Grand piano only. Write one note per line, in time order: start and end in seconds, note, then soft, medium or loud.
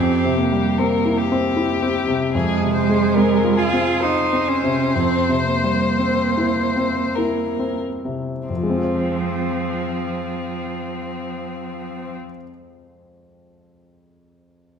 0.00 2.31 F2 soft
0.25 0.68 C3 soft
0.52 0.94 G3 soft
0.79 1.20 C4 soft
1.05 1.47 E4 soft
1.32 1.72 C4 soft
1.56 1.97 E4 soft
1.82 2.23 C4 soft
2.07 2.34 C3 soft
2.35 4.92 F2 soft
2.61 3.05 C3 soft
2.89 3.33 G#3 soft
3.17 3.62 C4 soft
3.44 3.90 F4 soft
3.73 4.20 C4 soft
4.02 4.51 F4 soft
4.33 4.83 C4 soft
4.64 4.95 C3 soft
4.96 8.45 F2 soft
5.29 5.85 C3 soft
5.64 6.23 G3 soft
5.99 6.60 C4 soft
6.37 7.00 E4 soft
6.76 7.41 C4 soft
7.18 7.87 E4 soft
7.59 8.31 C4 soft
8.05 8.49 C3 soft
8.49 12.16 F2 soft
8.57 12.23 F3 soft
8.63 12.30 G#3 soft
8.70 12.37 C4 soft
8.77 12.44 F4 soft
8.84 12.50 C5 soft